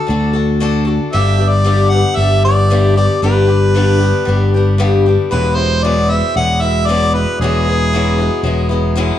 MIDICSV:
0, 0, Header, 1, 4, 480
1, 0, Start_track
1, 0, Tempo, 521739
1, 1040, Time_signature, 4, 2, 24, 8
1, 8454, End_track
2, 0, Start_track
2, 0, Title_t, "Harmonica"
2, 0, Program_c, 0, 22
2, 0, Note_on_c, 0, 69, 81
2, 506, Note_off_c, 0, 69, 0
2, 1038, Note_on_c, 0, 76, 91
2, 1373, Note_on_c, 0, 74, 89
2, 1387, Note_off_c, 0, 76, 0
2, 1750, Note_on_c, 0, 78, 90
2, 1763, Note_off_c, 0, 74, 0
2, 1992, Note_on_c, 0, 76, 89
2, 2006, Note_off_c, 0, 78, 0
2, 2237, Note_off_c, 0, 76, 0
2, 2249, Note_on_c, 0, 74, 87
2, 2693, Note_off_c, 0, 74, 0
2, 2732, Note_on_c, 0, 74, 82
2, 2951, Note_off_c, 0, 74, 0
2, 2975, Note_on_c, 0, 71, 83
2, 4374, Note_off_c, 0, 71, 0
2, 4887, Note_on_c, 0, 71, 85
2, 5116, Note_on_c, 0, 72, 83
2, 5129, Note_off_c, 0, 71, 0
2, 5367, Note_on_c, 0, 74, 90
2, 5380, Note_off_c, 0, 72, 0
2, 5617, Note_on_c, 0, 76, 84
2, 5631, Note_off_c, 0, 74, 0
2, 5851, Note_off_c, 0, 76, 0
2, 5857, Note_on_c, 0, 78, 96
2, 6086, Note_on_c, 0, 76, 88
2, 6100, Note_off_c, 0, 78, 0
2, 6318, Note_on_c, 0, 74, 93
2, 6332, Note_off_c, 0, 76, 0
2, 6569, Note_on_c, 0, 71, 83
2, 6583, Note_off_c, 0, 74, 0
2, 6806, Note_off_c, 0, 71, 0
2, 6816, Note_on_c, 0, 68, 91
2, 8210, Note_off_c, 0, 68, 0
2, 8454, End_track
3, 0, Start_track
3, 0, Title_t, "Steel-string acoustic guitar"
3, 0, Program_c, 1, 25
3, 62, Note_on_c, 1, 50, 57
3, 76, Note_on_c, 1, 62, 68
3, 91, Note_on_c, 1, 66, 68
3, 97, Note_on_c, 1, 69, 69
3, 295, Note_off_c, 1, 69, 0
3, 306, Note_on_c, 1, 69, 58
3, 309, Note_off_c, 1, 66, 0
3, 310, Note_off_c, 1, 50, 0
3, 317, Note_off_c, 1, 62, 0
3, 320, Note_on_c, 1, 66, 49
3, 333, Note_on_c, 1, 62, 50
3, 551, Note_off_c, 1, 62, 0
3, 553, Note_off_c, 1, 69, 0
3, 555, Note_off_c, 1, 66, 0
3, 556, Note_on_c, 1, 50, 81
3, 562, Note_on_c, 1, 62, 85
3, 566, Note_on_c, 1, 66, 93
3, 576, Note_on_c, 1, 69, 98
3, 769, Note_off_c, 1, 69, 0
3, 780, Note_on_c, 1, 69, 53
3, 789, Note_off_c, 1, 66, 0
3, 797, Note_off_c, 1, 50, 0
3, 797, Note_off_c, 1, 62, 0
3, 800, Note_on_c, 1, 66, 46
3, 808, Note_on_c, 1, 62, 43
3, 1030, Note_off_c, 1, 69, 0
3, 1036, Note_on_c, 1, 43, 61
3, 1040, Note_off_c, 1, 66, 0
3, 1040, Note_on_c, 1, 55, 69
3, 1041, Note_on_c, 1, 50, 72
3, 1044, Note_off_c, 1, 62, 0
3, 1055, Note_on_c, 1, 59, 69
3, 1057, Note_on_c, 1, 62, 77
3, 1060, Note_on_c, 1, 67, 79
3, 1261, Note_off_c, 1, 67, 0
3, 1272, Note_on_c, 1, 67, 53
3, 1274, Note_off_c, 1, 62, 0
3, 1279, Note_off_c, 1, 43, 0
3, 1280, Note_off_c, 1, 55, 0
3, 1281, Note_off_c, 1, 50, 0
3, 1283, Note_off_c, 1, 59, 0
3, 1285, Note_on_c, 1, 62, 46
3, 1294, Note_on_c, 1, 59, 40
3, 1301, Note_on_c, 1, 55, 41
3, 1512, Note_off_c, 1, 59, 0
3, 1512, Note_on_c, 1, 43, 68
3, 1513, Note_off_c, 1, 55, 0
3, 1513, Note_on_c, 1, 50, 74
3, 1517, Note_off_c, 1, 67, 0
3, 1520, Note_off_c, 1, 62, 0
3, 1524, Note_on_c, 1, 55, 79
3, 1524, Note_on_c, 1, 59, 68
3, 1531, Note_on_c, 1, 62, 73
3, 1531, Note_on_c, 1, 67, 74
3, 1753, Note_off_c, 1, 67, 0
3, 1757, Note_off_c, 1, 43, 0
3, 1758, Note_off_c, 1, 50, 0
3, 1763, Note_off_c, 1, 55, 0
3, 1763, Note_off_c, 1, 59, 0
3, 1764, Note_off_c, 1, 62, 0
3, 1764, Note_on_c, 1, 67, 46
3, 1775, Note_on_c, 1, 62, 44
3, 1786, Note_on_c, 1, 59, 43
3, 1801, Note_on_c, 1, 55, 38
3, 1998, Note_off_c, 1, 55, 0
3, 2003, Note_off_c, 1, 67, 0
3, 2004, Note_off_c, 1, 59, 0
3, 2009, Note_off_c, 1, 62, 0
3, 2009, Note_on_c, 1, 55, 55
3, 2015, Note_on_c, 1, 59, 57
3, 2030, Note_on_c, 1, 62, 60
3, 2033, Note_on_c, 1, 67, 59
3, 2239, Note_off_c, 1, 67, 0
3, 2246, Note_off_c, 1, 55, 0
3, 2249, Note_off_c, 1, 59, 0
3, 2250, Note_on_c, 1, 67, 51
3, 2254, Note_off_c, 1, 62, 0
3, 2265, Note_on_c, 1, 62, 49
3, 2275, Note_on_c, 1, 59, 44
3, 2282, Note_on_c, 1, 55, 42
3, 2481, Note_off_c, 1, 59, 0
3, 2486, Note_on_c, 1, 43, 68
3, 2487, Note_off_c, 1, 55, 0
3, 2487, Note_off_c, 1, 67, 0
3, 2489, Note_off_c, 1, 62, 0
3, 2492, Note_on_c, 1, 50, 71
3, 2492, Note_on_c, 1, 59, 77
3, 2498, Note_on_c, 1, 55, 78
3, 2500, Note_on_c, 1, 62, 76
3, 2505, Note_on_c, 1, 67, 81
3, 2709, Note_off_c, 1, 67, 0
3, 2712, Note_off_c, 1, 62, 0
3, 2720, Note_on_c, 1, 67, 50
3, 2723, Note_on_c, 1, 62, 47
3, 2725, Note_off_c, 1, 43, 0
3, 2726, Note_off_c, 1, 59, 0
3, 2728, Note_off_c, 1, 50, 0
3, 2731, Note_off_c, 1, 55, 0
3, 2737, Note_on_c, 1, 59, 41
3, 2746, Note_on_c, 1, 55, 38
3, 2962, Note_off_c, 1, 67, 0
3, 2963, Note_on_c, 1, 43, 63
3, 2964, Note_off_c, 1, 55, 0
3, 2964, Note_off_c, 1, 62, 0
3, 2969, Note_off_c, 1, 59, 0
3, 2970, Note_on_c, 1, 50, 72
3, 2975, Note_on_c, 1, 55, 67
3, 2980, Note_on_c, 1, 59, 69
3, 2981, Note_on_c, 1, 62, 78
3, 2985, Note_on_c, 1, 67, 76
3, 3179, Note_off_c, 1, 67, 0
3, 3190, Note_on_c, 1, 67, 46
3, 3198, Note_off_c, 1, 62, 0
3, 3200, Note_off_c, 1, 59, 0
3, 3204, Note_off_c, 1, 43, 0
3, 3207, Note_off_c, 1, 50, 0
3, 3210, Note_off_c, 1, 55, 0
3, 3210, Note_on_c, 1, 62, 48
3, 3211, Note_on_c, 1, 59, 42
3, 3223, Note_on_c, 1, 55, 43
3, 3437, Note_off_c, 1, 67, 0
3, 3446, Note_off_c, 1, 55, 0
3, 3447, Note_off_c, 1, 62, 0
3, 3448, Note_off_c, 1, 59, 0
3, 3448, Note_on_c, 1, 43, 70
3, 3455, Note_on_c, 1, 50, 68
3, 3457, Note_on_c, 1, 55, 68
3, 3463, Note_on_c, 1, 62, 77
3, 3464, Note_on_c, 1, 59, 70
3, 3468, Note_on_c, 1, 67, 75
3, 3663, Note_off_c, 1, 67, 0
3, 3674, Note_on_c, 1, 67, 48
3, 3677, Note_off_c, 1, 62, 0
3, 3686, Note_off_c, 1, 43, 0
3, 3687, Note_off_c, 1, 59, 0
3, 3688, Note_on_c, 1, 62, 47
3, 3690, Note_off_c, 1, 50, 0
3, 3691, Note_off_c, 1, 55, 0
3, 3698, Note_on_c, 1, 59, 42
3, 3707, Note_on_c, 1, 55, 43
3, 3901, Note_off_c, 1, 55, 0
3, 3912, Note_on_c, 1, 55, 65
3, 3917, Note_off_c, 1, 59, 0
3, 3920, Note_off_c, 1, 67, 0
3, 3927, Note_off_c, 1, 62, 0
3, 3928, Note_on_c, 1, 59, 60
3, 3942, Note_on_c, 1, 62, 68
3, 3946, Note_on_c, 1, 67, 65
3, 4159, Note_off_c, 1, 55, 0
3, 4166, Note_off_c, 1, 67, 0
3, 4167, Note_off_c, 1, 59, 0
3, 4173, Note_off_c, 1, 62, 0
3, 4177, Note_on_c, 1, 67, 52
3, 4197, Note_on_c, 1, 62, 48
3, 4205, Note_on_c, 1, 59, 47
3, 4208, Note_on_c, 1, 55, 43
3, 4400, Note_on_c, 1, 43, 84
3, 4401, Note_off_c, 1, 59, 0
3, 4403, Note_off_c, 1, 55, 0
3, 4408, Note_off_c, 1, 62, 0
3, 4411, Note_off_c, 1, 67, 0
3, 4412, Note_on_c, 1, 59, 83
3, 4414, Note_on_c, 1, 55, 80
3, 4415, Note_on_c, 1, 50, 83
3, 4419, Note_on_c, 1, 62, 84
3, 4421, Note_on_c, 1, 67, 81
3, 4642, Note_off_c, 1, 67, 0
3, 4643, Note_off_c, 1, 43, 0
3, 4648, Note_off_c, 1, 62, 0
3, 4649, Note_off_c, 1, 59, 0
3, 4650, Note_off_c, 1, 50, 0
3, 4650, Note_off_c, 1, 55, 0
3, 4653, Note_on_c, 1, 67, 48
3, 4660, Note_on_c, 1, 62, 43
3, 4676, Note_on_c, 1, 59, 39
3, 4682, Note_on_c, 1, 55, 42
3, 4884, Note_on_c, 1, 40, 69
3, 4887, Note_off_c, 1, 59, 0
3, 4890, Note_off_c, 1, 67, 0
3, 4891, Note_on_c, 1, 47, 73
3, 4891, Note_on_c, 1, 56, 68
3, 4892, Note_off_c, 1, 55, 0
3, 4893, Note_off_c, 1, 62, 0
3, 4896, Note_on_c, 1, 54, 68
3, 4899, Note_on_c, 1, 59, 74
3, 4899, Note_on_c, 1, 64, 67
3, 5106, Note_off_c, 1, 64, 0
3, 5117, Note_on_c, 1, 64, 49
3, 5122, Note_off_c, 1, 59, 0
3, 5125, Note_off_c, 1, 40, 0
3, 5128, Note_off_c, 1, 47, 0
3, 5128, Note_off_c, 1, 56, 0
3, 5131, Note_off_c, 1, 54, 0
3, 5133, Note_on_c, 1, 59, 45
3, 5143, Note_on_c, 1, 56, 42
3, 5145, Note_on_c, 1, 54, 40
3, 5361, Note_off_c, 1, 64, 0
3, 5365, Note_on_c, 1, 40, 62
3, 5368, Note_off_c, 1, 54, 0
3, 5369, Note_off_c, 1, 59, 0
3, 5371, Note_off_c, 1, 56, 0
3, 5376, Note_on_c, 1, 47, 73
3, 5379, Note_on_c, 1, 54, 74
3, 5382, Note_on_c, 1, 56, 62
3, 5389, Note_on_c, 1, 59, 73
3, 5391, Note_on_c, 1, 64, 68
3, 5590, Note_off_c, 1, 64, 0
3, 5601, Note_on_c, 1, 64, 46
3, 5604, Note_off_c, 1, 59, 0
3, 5605, Note_off_c, 1, 40, 0
3, 5611, Note_off_c, 1, 47, 0
3, 5612, Note_off_c, 1, 54, 0
3, 5614, Note_off_c, 1, 56, 0
3, 5615, Note_on_c, 1, 59, 44
3, 5626, Note_on_c, 1, 56, 41
3, 5631, Note_on_c, 1, 54, 37
3, 5831, Note_off_c, 1, 54, 0
3, 5842, Note_on_c, 1, 54, 52
3, 5843, Note_off_c, 1, 64, 0
3, 5849, Note_off_c, 1, 56, 0
3, 5850, Note_off_c, 1, 59, 0
3, 5860, Note_on_c, 1, 56, 56
3, 5869, Note_on_c, 1, 59, 57
3, 5876, Note_on_c, 1, 64, 62
3, 6075, Note_off_c, 1, 64, 0
3, 6083, Note_off_c, 1, 54, 0
3, 6084, Note_off_c, 1, 59, 0
3, 6086, Note_on_c, 1, 64, 45
3, 6093, Note_off_c, 1, 56, 0
3, 6095, Note_on_c, 1, 59, 47
3, 6108, Note_on_c, 1, 56, 43
3, 6114, Note_on_c, 1, 54, 41
3, 6325, Note_off_c, 1, 64, 0
3, 6326, Note_on_c, 1, 40, 68
3, 6328, Note_off_c, 1, 54, 0
3, 6330, Note_off_c, 1, 59, 0
3, 6332, Note_off_c, 1, 56, 0
3, 6337, Note_on_c, 1, 47, 70
3, 6339, Note_on_c, 1, 54, 73
3, 6343, Note_on_c, 1, 56, 75
3, 6345, Note_on_c, 1, 59, 84
3, 6349, Note_on_c, 1, 64, 78
3, 6558, Note_off_c, 1, 64, 0
3, 6565, Note_off_c, 1, 40, 0
3, 6569, Note_on_c, 1, 64, 43
3, 6571, Note_off_c, 1, 47, 0
3, 6572, Note_off_c, 1, 54, 0
3, 6574, Note_off_c, 1, 56, 0
3, 6575, Note_off_c, 1, 59, 0
3, 6587, Note_on_c, 1, 59, 42
3, 6588, Note_on_c, 1, 56, 39
3, 6600, Note_on_c, 1, 54, 34
3, 6806, Note_off_c, 1, 64, 0
3, 6815, Note_off_c, 1, 59, 0
3, 6816, Note_off_c, 1, 56, 0
3, 6817, Note_off_c, 1, 54, 0
3, 6826, Note_on_c, 1, 40, 71
3, 6828, Note_on_c, 1, 47, 71
3, 6828, Note_on_c, 1, 54, 77
3, 6839, Note_on_c, 1, 56, 68
3, 6843, Note_on_c, 1, 59, 85
3, 6846, Note_on_c, 1, 64, 85
3, 7051, Note_off_c, 1, 64, 0
3, 7055, Note_off_c, 1, 40, 0
3, 7056, Note_off_c, 1, 47, 0
3, 7056, Note_off_c, 1, 54, 0
3, 7061, Note_off_c, 1, 56, 0
3, 7062, Note_on_c, 1, 64, 50
3, 7063, Note_off_c, 1, 59, 0
3, 7074, Note_on_c, 1, 59, 49
3, 7084, Note_on_c, 1, 56, 39
3, 7098, Note_on_c, 1, 54, 42
3, 7293, Note_off_c, 1, 64, 0
3, 7296, Note_on_c, 1, 40, 69
3, 7298, Note_off_c, 1, 59, 0
3, 7300, Note_off_c, 1, 54, 0
3, 7301, Note_on_c, 1, 47, 68
3, 7303, Note_off_c, 1, 56, 0
3, 7311, Note_on_c, 1, 54, 76
3, 7315, Note_on_c, 1, 56, 74
3, 7319, Note_on_c, 1, 64, 75
3, 7320, Note_on_c, 1, 59, 65
3, 7515, Note_off_c, 1, 64, 0
3, 7525, Note_off_c, 1, 59, 0
3, 7526, Note_on_c, 1, 64, 51
3, 7529, Note_off_c, 1, 40, 0
3, 7532, Note_off_c, 1, 47, 0
3, 7536, Note_on_c, 1, 59, 48
3, 7537, Note_off_c, 1, 54, 0
3, 7539, Note_off_c, 1, 56, 0
3, 7554, Note_on_c, 1, 56, 44
3, 7558, Note_on_c, 1, 54, 44
3, 7750, Note_off_c, 1, 54, 0
3, 7761, Note_on_c, 1, 54, 68
3, 7764, Note_off_c, 1, 64, 0
3, 7768, Note_off_c, 1, 56, 0
3, 7769, Note_off_c, 1, 59, 0
3, 7779, Note_on_c, 1, 56, 65
3, 7788, Note_on_c, 1, 59, 63
3, 7791, Note_on_c, 1, 64, 64
3, 7985, Note_off_c, 1, 64, 0
3, 7996, Note_on_c, 1, 64, 53
3, 8001, Note_off_c, 1, 54, 0
3, 8001, Note_off_c, 1, 59, 0
3, 8010, Note_off_c, 1, 56, 0
3, 8012, Note_on_c, 1, 59, 55
3, 8021, Note_on_c, 1, 56, 50
3, 8028, Note_on_c, 1, 54, 46
3, 8238, Note_off_c, 1, 64, 0
3, 8239, Note_on_c, 1, 40, 83
3, 8243, Note_off_c, 1, 54, 0
3, 8246, Note_off_c, 1, 59, 0
3, 8248, Note_on_c, 1, 47, 80
3, 8250, Note_off_c, 1, 56, 0
3, 8254, Note_on_c, 1, 54, 80
3, 8257, Note_on_c, 1, 59, 91
3, 8261, Note_on_c, 1, 56, 96
3, 8262, Note_on_c, 1, 64, 92
3, 8454, Note_off_c, 1, 40, 0
3, 8454, Note_off_c, 1, 47, 0
3, 8454, Note_off_c, 1, 54, 0
3, 8454, Note_off_c, 1, 56, 0
3, 8454, Note_off_c, 1, 59, 0
3, 8454, Note_off_c, 1, 64, 0
3, 8454, End_track
4, 0, Start_track
4, 0, Title_t, "Fingered electric bass"
4, 0, Program_c, 2, 33
4, 83, Note_on_c, 2, 38, 85
4, 904, Note_off_c, 2, 38, 0
4, 1050, Note_on_c, 2, 31, 88
4, 1869, Note_off_c, 2, 31, 0
4, 1997, Note_on_c, 2, 31, 87
4, 2822, Note_off_c, 2, 31, 0
4, 2966, Note_on_c, 2, 31, 86
4, 3787, Note_off_c, 2, 31, 0
4, 3932, Note_on_c, 2, 31, 83
4, 4751, Note_off_c, 2, 31, 0
4, 4896, Note_on_c, 2, 28, 85
4, 5713, Note_off_c, 2, 28, 0
4, 5848, Note_on_c, 2, 28, 84
4, 6667, Note_off_c, 2, 28, 0
4, 6803, Note_on_c, 2, 28, 83
4, 7623, Note_off_c, 2, 28, 0
4, 7755, Note_on_c, 2, 28, 88
4, 8372, Note_off_c, 2, 28, 0
4, 8454, End_track
0, 0, End_of_file